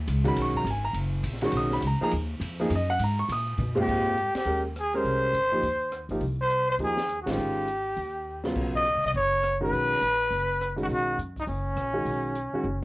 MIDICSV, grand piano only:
0, 0, Header, 1, 2, 480
1, 0, Start_track
1, 0, Tempo, 292255
1, 616, Time_signature, 4, 2, 24, 8
1, 21092, End_track
2, 0, Start_track
2, 0, Title_t, "Grand piano"
2, 0, Program_c, 0, 0
2, 398, Note_on_c, 0, 51, 68
2, 404, Note_on_c, 0, 56, 66
2, 411, Note_on_c, 0, 66, 78
2, 415, Note_on_c, 0, 61, 68
2, 456, Note_on_c, 0, 83, 103
2, 625, Note_off_c, 0, 83, 0
2, 684, Note_on_c, 0, 85, 97
2, 932, Note_on_c, 0, 82, 101
2, 933, Note_off_c, 0, 85, 0
2, 1043, Note_off_c, 0, 51, 0
2, 1046, Note_off_c, 0, 56, 0
2, 1050, Note_off_c, 0, 66, 0
2, 1051, Note_off_c, 0, 61, 0
2, 1103, Note_off_c, 0, 82, 0
2, 1156, Note_on_c, 0, 80, 81
2, 1387, Note_on_c, 0, 82, 95
2, 1408, Note_off_c, 0, 80, 0
2, 1569, Note_off_c, 0, 82, 0
2, 2332, Note_on_c, 0, 51, 72
2, 2338, Note_on_c, 0, 66, 80
2, 2345, Note_on_c, 0, 56, 66
2, 2348, Note_on_c, 0, 61, 67
2, 2391, Note_on_c, 0, 85, 98
2, 2551, Note_off_c, 0, 85, 0
2, 2578, Note_on_c, 0, 87, 105
2, 2837, Note_off_c, 0, 87, 0
2, 2845, Note_on_c, 0, 83, 98
2, 2968, Note_off_c, 0, 51, 0
2, 2971, Note_off_c, 0, 66, 0
2, 2975, Note_off_c, 0, 56, 0
2, 2976, Note_off_c, 0, 61, 0
2, 3018, Note_off_c, 0, 83, 0
2, 3073, Note_on_c, 0, 82, 88
2, 3304, Note_on_c, 0, 53, 73
2, 3312, Note_on_c, 0, 58, 59
2, 3313, Note_on_c, 0, 63, 62
2, 3319, Note_off_c, 0, 82, 0
2, 3324, Note_on_c, 0, 68, 78
2, 3343, Note_on_c, 0, 82, 109
2, 3444, Note_off_c, 0, 82, 0
2, 3473, Note_off_c, 0, 53, 0
2, 3477, Note_off_c, 0, 58, 0
2, 3478, Note_off_c, 0, 63, 0
2, 3483, Note_off_c, 0, 68, 0
2, 4265, Note_on_c, 0, 53, 73
2, 4269, Note_on_c, 0, 58, 68
2, 4286, Note_on_c, 0, 68, 81
2, 4287, Note_on_c, 0, 63, 68
2, 4433, Note_off_c, 0, 53, 0
2, 4435, Note_off_c, 0, 58, 0
2, 4444, Note_off_c, 0, 63, 0
2, 4444, Note_off_c, 0, 68, 0
2, 4524, Note_on_c, 0, 75, 90
2, 4761, Note_on_c, 0, 78, 108
2, 4769, Note_off_c, 0, 75, 0
2, 4934, Note_off_c, 0, 78, 0
2, 4988, Note_on_c, 0, 82, 83
2, 5241, Note_off_c, 0, 82, 0
2, 5244, Note_on_c, 0, 85, 97
2, 5415, Note_off_c, 0, 85, 0
2, 5457, Note_on_c, 0, 87, 105
2, 6150, Note_off_c, 0, 87, 0
2, 6160, Note_on_c, 0, 46, 75
2, 6167, Note_on_c, 0, 56, 87
2, 6169, Note_on_c, 0, 67, 66
2, 6171, Note_on_c, 0, 65, 73
2, 6177, Note_on_c, 0, 60, 68
2, 6800, Note_off_c, 0, 46, 0
2, 6804, Note_off_c, 0, 56, 0
2, 6805, Note_off_c, 0, 67, 0
2, 6806, Note_off_c, 0, 65, 0
2, 6809, Note_off_c, 0, 60, 0
2, 7324, Note_on_c, 0, 56, 50
2, 7331, Note_on_c, 0, 61, 46
2, 7338, Note_on_c, 0, 67, 43
2, 7344, Note_on_c, 0, 70, 54
2, 7588, Note_off_c, 0, 56, 0
2, 7591, Note_off_c, 0, 61, 0
2, 7595, Note_off_c, 0, 67, 0
2, 7597, Note_off_c, 0, 70, 0
2, 8114, Note_on_c, 0, 56, 63
2, 8114, Note_on_c, 0, 67, 60
2, 8124, Note_on_c, 0, 61, 65
2, 8124, Note_on_c, 0, 70, 71
2, 8739, Note_off_c, 0, 56, 0
2, 8739, Note_off_c, 0, 67, 0
2, 8743, Note_off_c, 0, 61, 0
2, 8743, Note_off_c, 0, 70, 0
2, 9070, Note_on_c, 0, 53, 58
2, 9070, Note_on_c, 0, 63, 52
2, 9072, Note_on_c, 0, 58, 52
2, 9088, Note_on_c, 0, 67, 66
2, 9235, Note_off_c, 0, 53, 0
2, 9235, Note_off_c, 0, 63, 0
2, 9236, Note_off_c, 0, 58, 0
2, 9244, Note_off_c, 0, 67, 0
2, 10031, Note_on_c, 0, 58, 52
2, 10032, Note_on_c, 0, 63, 52
2, 10037, Note_on_c, 0, 53, 57
2, 10047, Note_on_c, 0, 67, 65
2, 10197, Note_off_c, 0, 58, 0
2, 10197, Note_off_c, 0, 63, 0
2, 10199, Note_off_c, 0, 53, 0
2, 10204, Note_off_c, 0, 67, 0
2, 11167, Note_on_c, 0, 67, 59
2, 11168, Note_on_c, 0, 53, 58
2, 11170, Note_on_c, 0, 63, 49
2, 11172, Note_on_c, 0, 58, 53
2, 11431, Note_off_c, 0, 53, 0
2, 11431, Note_off_c, 0, 67, 0
2, 11432, Note_off_c, 0, 63, 0
2, 11433, Note_off_c, 0, 58, 0
2, 11922, Note_on_c, 0, 51, 62
2, 11925, Note_on_c, 0, 61, 55
2, 11927, Note_on_c, 0, 56, 57
2, 11942, Note_on_c, 0, 65, 71
2, 12563, Note_off_c, 0, 51, 0
2, 12565, Note_off_c, 0, 61, 0
2, 12566, Note_off_c, 0, 56, 0
2, 12574, Note_off_c, 0, 65, 0
2, 13868, Note_on_c, 0, 49, 60
2, 13875, Note_on_c, 0, 65, 64
2, 13878, Note_on_c, 0, 54, 53
2, 13883, Note_on_c, 0, 59, 57
2, 14497, Note_off_c, 0, 49, 0
2, 14500, Note_off_c, 0, 65, 0
2, 14502, Note_off_c, 0, 54, 0
2, 14504, Note_off_c, 0, 59, 0
2, 15777, Note_on_c, 0, 51, 62
2, 15783, Note_on_c, 0, 61, 55
2, 15788, Note_on_c, 0, 56, 56
2, 15792, Note_on_c, 0, 66, 63
2, 16412, Note_off_c, 0, 51, 0
2, 16414, Note_off_c, 0, 61, 0
2, 16417, Note_off_c, 0, 56, 0
2, 16419, Note_off_c, 0, 66, 0
2, 17678, Note_on_c, 0, 51, 56
2, 17694, Note_on_c, 0, 56, 53
2, 17700, Note_on_c, 0, 61, 51
2, 17705, Note_on_c, 0, 66, 57
2, 18322, Note_off_c, 0, 51, 0
2, 18330, Note_off_c, 0, 56, 0
2, 18333, Note_off_c, 0, 61, 0
2, 18336, Note_off_c, 0, 66, 0
2, 19598, Note_on_c, 0, 51, 56
2, 19606, Note_on_c, 0, 66, 62
2, 19609, Note_on_c, 0, 56, 51
2, 19611, Note_on_c, 0, 61, 51
2, 20242, Note_off_c, 0, 51, 0
2, 20246, Note_off_c, 0, 66, 0
2, 20248, Note_off_c, 0, 56, 0
2, 20249, Note_off_c, 0, 61, 0
2, 20587, Note_on_c, 0, 51, 53
2, 20592, Note_on_c, 0, 56, 52
2, 20592, Note_on_c, 0, 61, 53
2, 20608, Note_on_c, 0, 66, 67
2, 20756, Note_off_c, 0, 51, 0
2, 20758, Note_off_c, 0, 56, 0
2, 20758, Note_off_c, 0, 61, 0
2, 20766, Note_off_c, 0, 66, 0
2, 21092, End_track
0, 0, End_of_file